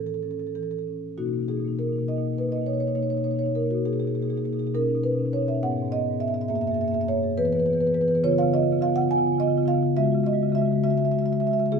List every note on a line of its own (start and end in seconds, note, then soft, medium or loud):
0.00 1.15 A2 medium
0.00 0.44 E3 soft
0.00 0.13 C#4 soft
0.00 0.06 A4 medium
0.06 0.14 A4 medium
0.14 0.22 A4 medium
0.22 0.75 C#4 soft
0.22 0.31 A4 medium
0.31 0.39 A4 medium
0.39 0.47 A4 medium
0.47 0.55 A4 soft
0.55 1.06 E3 soft
0.55 0.63 A4 medium
0.63 0.71 A4 medium
0.71 0.79 A4 medium
0.79 0.83 A4 soft
0.87 1.18 C#4 soft
1.18 1.29 B2 medium
1.18 1.26 A#3 soft
1.18 1.26 D#4 soft
1.18 1.47 F#4 medium
1.26 1.39 B2 soft
1.26 1.33 A#3 soft
1.26 1.34 D#4 soft
1.33 1.41 A#3 soft
1.33 1.43 D#4 soft
1.39 1.49 B2 soft
1.39 1.50 A#3 soft
1.39 1.52 D#4 soft
1.48 1.59 B2 soft
1.48 1.57 A#3 soft
1.48 1.60 D#4 soft
1.48 1.77 G#4 medium
1.57 1.69 B2 soft
1.57 1.64 A#3 soft
1.57 1.68 D#4 soft
1.64 1.73 A#3 soft
1.64 1.76 D#4 soft
1.69 1.79 B2 soft
1.73 1.80 A#3 soft
1.73 1.84 D#4 soft
1.79 1.88 B2 soft
1.79 1.88 A#3 soft
1.79 2.07 A#4 medium
1.84 1.96 A#3 soft
1.84 1.92 D#4 soft
1.88 1.99 B2 soft
1.88 2.00 D#4 soft
1.96 2.09 B2 soft
1.96 2.03 A#3 soft
2.00 2.10 A#3 soft
2.00 2.08 D#4 soft
2.08 2.18 B2 soft
2.08 2.18 A#3 soft
2.08 2.16 D#4 soft
2.08 2.37 D#5 medium
2.16 2.28 B2 soft
2.16 2.26 A#3 soft
2.16 2.25 D#4 soft
2.25 2.39 B2 soft
2.25 2.34 A#3 soft
2.25 2.33 D#4 soft
2.33 2.41 A#3 soft
2.33 2.43 D#4 soft
2.38 2.49 B2 soft
2.38 2.49 A#3 soft
2.38 2.53 B4 medium
2.43 2.52 D#4 soft
2.49 2.58 B2 soft
2.49 2.56 A#3 soft
2.49 2.62 D#4 soft
2.49 2.67 D#5 medium
2.56 2.68 B2 soft
2.56 2.64 A#3 soft
2.62 2.72 A#3 soft
2.62 2.70 D#4 soft
2.66 2.78 B2 soft
2.66 2.78 D#4 soft
2.66 2.73 C#5 medium
2.72 2.80 A#3 soft
2.72 2.80 C#5 medium
2.78 2.88 B2 soft
2.78 2.88 A#3 soft
2.78 2.86 D#4 soft
2.78 2.87 C#5 medium
2.86 2.92 B2 soft
2.86 2.92 A#3 soft
2.86 2.92 D#4 soft
2.86 2.95 C#5 medium
2.95 3.06 B2 soft
2.95 3.03 A#3 soft
2.95 3.04 D#4 soft
2.95 3.02 C#5 medium
3.02 3.15 B2 soft
3.02 3.10 A#3 soft
3.02 3.12 D#4 soft
3.02 3.10 C#5 medium
3.10 3.18 A#3 soft
3.10 3.20 D#4 soft
3.10 3.17 C#5 medium
3.15 3.24 B2 soft
3.15 3.26 A#3 soft
3.15 3.24 C#5 medium
3.20 3.28 D#4 soft
3.20 3.31 C#5 medium
3.24 3.35 B2 soft
3.24 3.34 A#3 soft
3.24 3.36 D#4 soft
3.31 3.45 B2 soft
3.31 3.41 A#3 soft
3.31 3.39 C#5 medium
3.36 3.43 D#4 soft
3.36 3.46 C#5 medium
3.41 3.55 B2 soft
3.41 3.49 A#3 soft
3.41 3.52 D#4 soft
3.46 3.57 A#3 soft
3.46 3.52 C#5 medium
3.52 3.64 B2 soft
3.52 3.60 D#4 soft
3.52 3.70 A#4 medium
3.57 3.65 A#3 soft
3.57 3.68 D#4 soft
3.64 3.75 B2 soft
3.64 3.73 A#3 soft
3.68 3.77 D#4 soft
3.68 3.85 F#4 medium
3.73 3.82 B2 soft
3.73 3.82 A#3 soft
3.73 3.82 D#4 soft
3.85 3.96 B2 medium
3.85 3.93 A#3 soft
3.85 3.93 D#4 soft
3.85 3.93 G#4 medium
3.93 4.12 B2 soft
3.93 4.02 A#3 soft
3.93 4.02 D#4 soft
3.93 4.00 G#4 medium
4.00 4.11 A#3 soft
4.00 4.10 D#4 soft
4.00 4.07 G#4 medium
4.07 4.19 A#3 soft
4.07 4.18 D#4 soft
4.07 4.15 G#4 medium
4.15 4.24 B2 soft
4.15 4.25 D#4 soft
4.15 4.22 G#4 medium
4.19 4.28 A#3 soft
4.19 4.30 G#4 medium
4.24 4.34 B2 soft
4.24 4.34 D#4 soft
4.28 4.37 A#3 soft
4.28 4.38 G#4 medium
4.34 4.44 B2 soft
4.34 4.45 A#3 soft
4.34 4.41 D#4 soft
4.34 4.45 G#4 medium
4.41 4.54 B2 soft
4.41 4.53 A#3 soft
4.41 4.49 D#4 soft
4.45 4.53 G#4 medium
4.49 4.62 A#3 soft
4.49 4.57 D#4 soft
4.49 4.59 G#4 medium
4.54 4.63 B2 soft
4.54 4.65 D#4 soft
4.59 4.71 B2 soft
4.59 4.71 A#3 soft
4.59 4.67 G#4 medium
4.65 4.71 D#4 soft
4.65 4.71 G#4 medium
4.74 4.84 B2 medium
4.74 4.82 C#4 soft
4.74 4.82 D#4 soft
4.74 5.02 A#4 medium
4.82 4.94 B2 soft
4.82 4.90 C#4 soft
4.82 4.88 D#4 soft
4.88 4.98 C#4 soft
4.88 4.96 D#4 soft
4.94 5.05 B2 medium
4.94 5.06 C#4 soft
4.94 5.04 D#4 soft
5.04 5.15 B2 soft
5.04 5.12 C#4 soft
5.04 5.12 D#4 soft
5.04 5.31 B4 medium
5.12 5.25 B2 soft
5.12 5.19 C#4 soft
5.12 5.19 D#4 soft
5.19 5.27 C#4 soft
5.19 5.26 D#4 soft
5.25 5.36 B2 soft
5.25 5.36 C#4 soft
5.25 5.32 D#4 soft
5.32 5.47 B2 soft
5.32 5.43 C#4 soft
5.32 5.39 D#4 soft
5.32 5.47 C#5 medium
5.39 5.49 C#4 soft
5.39 5.46 D#4 soft
5.46 5.59 B2 soft
5.46 5.59 C#4 soft
5.46 5.54 D#4 soft
5.46 5.62 E5 medium
5.54 5.59 D#4 soft
5.63 5.72 G#2 medium
5.63 5.72 B3 soft
5.63 5.70 G#4 soft
5.63 5.91 F#5 medium
5.70 5.82 G#2 soft
5.70 5.80 B3 soft
5.70 5.78 G#4 soft
5.78 5.88 B3 soft
5.78 5.85 G#4 soft
5.82 5.91 G#2 soft
5.82 5.93 G#4 soft
5.88 6.01 G#2 soft
5.88 5.96 B3 soft
5.88 6.20 D#5 medium
5.93 6.04 B3 soft
5.93 5.99 G#4 soft
5.99 6.11 G#2 medium
5.99 6.06 G#4 soft
6.04 6.14 B3 soft
6.04 6.13 G#4 soft
6.11 6.20 G#2 soft
6.11 6.22 B3 soft
6.11 6.19 G#4 soft
6.19 6.31 G#2 soft
6.19 6.30 B3 soft
6.19 6.27 G#4 soft
6.19 6.28 E5 medium
6.27 6.38 B3 soft
6.27 6.34 G#4 soft
6.27 6.34 E5 medium
6.31 6.42 G#2 soft
6.31 6.42 G#4 soft
6.31 6.41 E5 medium
6.38 6.48 B3 soft
6.38 6.48 E5 medium
6.42 6.48 G#2 soft
6.42 6.48 G#4 soft
6.48 6.60 F#2 medium
6.48 6.59 A#3 medium
6.48 6.57 G#4 medium
6.48 6.55 E5 medium
6.55 6.68 A#3 soft
6.55 6.64 G#4 soft
6.55 6.61 E5 medium
6.60 6.71 F#2 medium
6.60 6.71 G#4 soft
6.60 6.67 E5 medium
6.67 6.81 F#2 medium
6.67 6.76 A#3 soft
6.67 6.78 G#4 soft
6.67 6.74 E5 medium
6.74 6.84 A#3 soft
6.74 6.86 G#4 soft
6.74 6.81 E5 medium
6.81 6.92 F#2 soft
6.81 6.92 A#3 soft
6.81 6.88 E5 medium
6.86 6.93 G#4 soft
6.86 6.94 E5 medium
6.92 7.03 F#2 medium
6.92 7.00 A#3 soft
6.92 7.00 G#4 soft
6.92 7.01 E5 medium
7.00 7.13 F#2 medium
7.00 7.08 A#3 soft
7.00 7.09 G#4 soft
7.00 7.05 E5 medium
7.08 7.17 A#3 soft
7.08 7.15 G#4 soft
7.08 7.36 C#5 medium
7.13 7.24 F#2 medium
7.13 7.24 A#3 soft
7.13 7.23 G#4 soft
7.23 7.35 F#2 medium
7.23 7.35 A#3 soft
7.23 7.30 G#4 soft
7.30 7.35 G#4 soft
7.37 7.48 E3 medium
7.37 7.46 B3 soft
7.37 7.46 G#4 soft
7.37 7.45 B4 medium
7.45 7.56 E3 soft
7.45 7.55 B3 soft
7.45 7.54 G#4 soft
7.45 7.53 B4 medium
7.53 7.66 E3 medium
7.53 7.62 B3 soft
7.53 7.62 G#4 soft
7.53 7.60 B4 medium
7.60 7.70 B3 soft
7.60 7.70 G#4 soft
7.60 7.66 B4 medium
7.66 7.75 E3 soft
7.66 7.73 B4 medium
7.70 7.77 B3 soft
7.70 7.78 G#4 soft
7.70 7.80 B4 medium
7.75 7.83 E3 medium
7.75 7.85 B3 soft
7.75 7.86 G#4 soft
7.80 7.93 E3 soft
7.80 7.87 B4 medium
7.85 7.92 B3 soft
7.85 7.95 G#4 soft
7.85 7.94 B4 medium
7.92 8.02 E3 soft
7.92 8.01 B3 soft
7.92 8.02 G#4 soft
7.92 8.01 B4 medium
8.01 8.11 E3 soft
8.01 8.08 B3 soft
8.01 8.10 G#4 soft
8.01 8.08 B4 medium
8.08 8.21 E3 medium
8.08 8.16 B3 soft
8.08 8.17 G#4 soft
8.08 8.15 B4 medium
8.15 8.21 B3 soft
8.15 8.21 G#4 soft
8.15 8.20 B4 medium
8.24 8.33 C#3 medium
8.24 8.32 B3 medium
8.24 8.32 F4 medium
8.24 8.38 C#5 loud
8.32 8.42 C#3 medium
8.32 8.41 B3 soft
8.32 8.39 F4 soft
8.38 8.53 C#3 medium
8.38 8.48 B3 soft
8.38 8.48 F4 soft
8.38 8.53 F5 loud
8.48 8.56 B3 soft
8.48 8.55 F4 soft
8.53 8.62 C#3 medium
8.53 8.64 B3 soft
8.53 8.63 F4 medium
8.53 8.81 D#5 loud
8.62 8.72 C#3 medium
8.62 8.72 B3 soft
8.62 8.71 F4 soft
8.71 8.81 C#3 medium
8.71 8.80 B3 medium
8.71 8.79 F4 soft
8.79 8.90 C#3 medium
8.79 8.88 B3 soft
8.79 8.86 F4 soft
8.79 8.96 F5 loud
8.86 8.98 C#3 medium
8.86 8.95 B3 soft
8.86 8.94 F4 medium
8.94 9.08 C#3 medium
8.94 9.02 B3 soft
8.94 9.01 F4 soft
8.94 9.10 F#5 medium
9.01 9.09 B3 soft
9.01 9.09 F4 soft
9.08 9.18 C#3 medium
9.08 9.16 B3 soft
9.08 9.17 F4 soft
9.08 9.38 G#5 loud
9.16 9.27 C#3 medium
9.16 9.24 B3 medium
9.16 9.27 F4 soft
9.24 9.38 C#3 medium
9.24 9.32 B3 soft
9.24 9.35 F4 soft
9.32 9.41 B3 soft
9.32 9.42 F4 soft
9.38 9.48 C#3 medium
9.38 9.48 B3 soft
9.38 9.67 D#5 loud
9.42 9.50 F4 soft
9.48 9.57 C#3 medium
9.48 9.55 B3 soft
9.48 9.57 F4 soft
9.55 9.66 C#3 medium
9.55 9.63 B3 soft
9.55 9.66 F4 soft
9.63 9.74 C#3 medium
9.63 9.71 B3 medium
9.63 9.74 F4 medium
9.68 9.78 B3 soft
9.68 9.96 F5 medium
9.74 9.83 C#3 medium
9.74 9.83 F4 soft
9.78 9.86 B3 soft
9.83 9.93 C#3 medium
9.83 9.93 B3 soft
9.83 9.93 F4 soft
9.96 10.06 C#3 medium
9.96 10.05 G#3 medium
9.96 10.03 F#4 medium
9.96 10.25 E5 loud
10.03 10.14 C#3 medium
10.03 10.14 G#3 soft
10.03 10.12 F#4 soft
10.12 10.24 C#3 medium
10.12 10.24 G#3 soft
10.12 10.20 F#4 medium
10.20 10.33 G#3 soft
10.20 10.27 F#4 soft
10.24 10.33 C#3 medium
10.24 10.35 F#4 soft
10.24 10.54 D#5 medium
10.33 10.43 C#3 medium
10.33 10.41 G#3 soft
10.33 10.42 F#4 soft
10.41 10.52 C#3 medium
10.41 10.50 G#3 soft
10.41 10.49 F#4 soft
10.49 10.62 C#3 medium
10.49 10.58 G#3 soft
10.49 10.57 F#4 soft
10.55 10.68 G#3 soft
10.55 10.65 F#4 medium
10.55 10.82 E5 medium
10.62 10.72 C#3 medium
10.62 10.73 F#4 soft
10.68 10.75 G#3 soft
10.72 10.81 C#3 medium
10.72 10.81 G#3 soft
10.72 10.81 F#4 soft
10.83 10.94 C#3 medium
10.83 10.91 G#3 soft
10.83 10.91 F#4 medium
10.83 10.90 E5 medium
10.90 11.03 C#3 medium
10.90 11.00 G#3 soft
10.90 10.99 F#4 soft
10.90 10.98 E5 medium
10.98 11.08 G#3 soft
10.98 11.06 F#4 soft
10.98 11.05 E5 medium
11.03 11.12 C#3 medium
11.03 11.13 F#4 soft
11.03 11.11 E5 medium
11.08 11.22 C#3 soft
11.08 11.15 G#3 soft
11.08 11.19 E5 medium
11.13 11.24 G#3 soft
11.13 11.20 F#4 soft
11.19 11.32 C#3 medium
11.19 11.28 F#4 soft
11.19 11.26 E5 medium
11.24 11.32 G#3 soft
11.24 11.33 E5 medium
11.28 11.36 F#4 soft
11.32 11.42 C#3 soft
11.32 11.41 G#3 soft
11.32 11.44 F#4 soft
11.32 11.40 E5 medium
11.40 11.51 C#3 medium
11.40 11.49 G#3 soft
11.40 11.51 F#4 soft
11.40 11.47 E5 medium
11.47 11.58 G#3 soft
11.47 11.59 F#4 soft
11.47 11.53 E5 medium
11.51 11.59 C#3 soft
11.51 11.60 E5 medium
11.58 11.70 C#3 medium
11.58 11.65 G#3 soft
11.58 11.69 F#4 soft
11.58 11.66 E5 medium
11.65 11.69 G#3 soft
11.65 11.69 E5 medium
11.72 11.80 C#3 medium
11.72 11.80 A#3 medium
11.72 11.80 F4 medium
11.72 11.80 G#4 medium